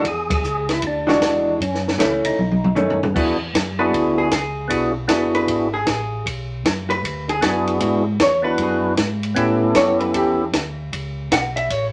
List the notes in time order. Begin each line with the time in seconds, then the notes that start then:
0.05 E2 G#4, kick, ride
0.30 G#4, kick, ride
0.43 C#2, hi-hat pedal
0.69 snare, ride
0.73 E4
0.82 D2, kick, ride
0.87 D4
1.07 E3 G#3 D4 F#4, snare
1.22 E2, kick, snare, hi-hat pedal, ride
1.60 F#2 C#4, kick, ride
1.75 snare
1.88 snare
1.98 C#2 E3 A3 C#4 E4, kick, snare, hi-hat pedal, ride
2.24 C#2 D#4, ride
2.38 B1, mid tom
2.52 mid tom
2.64 mid tom
2.75 F#2 D#3 A3 C#4, floor tom, hi-hat pedal
2.90 floor tom
3.03 floor tom
3.14 E2 B3 D4 E4 F#4 G#4, kick, crash
3.54 F#2, kick, snare, hi-hat pedal, ride
3.79 B3 D4 E4 F#4 G#4 B4
3.93 D2, kick, ride
4.18 G#4
4.31 C#2 G#4, kick, snare, hi-hat pedal, ride
4.68 B1 B3 D4 E4 F#4 G#4, kick, ride
5.08 F#1 B3 D4 E4 F#4 G#4, kick, snare, hi-hat pedal, ride
5.35 B4, ride
5.48 G#1, kick, ride
5.74 G#4
5.87 A1 G#4, kick, snare, hi-hat pedal, ride
6.26 B1, kick, ride
6.65 F#2, kick, snare, hi-hat pedal, ride
6.90 B4, ride
7.04 D2, kick, ride
7.29 G#4, ride
7.41 F#2 B3 D4 E4 F#4 G#4, kick, snare, hi-hat pedal, ride
7.67 ride
7.80 G#2 B3 D4 E4 F#4 G#4, kick, ride
8.20 E2 C#5, kick, snare, hi-hat pedal, ride
8.42 B3 D4 E4 F#4 B4
8.58 F#2, kick, ride
8.62 G#4
8.97 G#2, kick, snare, hi-hat pedal, ride
9.23 ride
9.35 A2 B3 C#4 E4 G4 A4, kick, ride
9.75 F#2 C#5, kick, snare, hi-hat pedal, ride
10.00 B4, ride
10.14 E2 G4, kick, ride
10.53 D2, kick, snare, hi-hat pedal, ride
10.92 C#2, kick, ride
11.32 B1 F#5, kick, snare, hi-hat pedal, ride
11.56 E5, ride
11.70 A1 C#5, kick, ride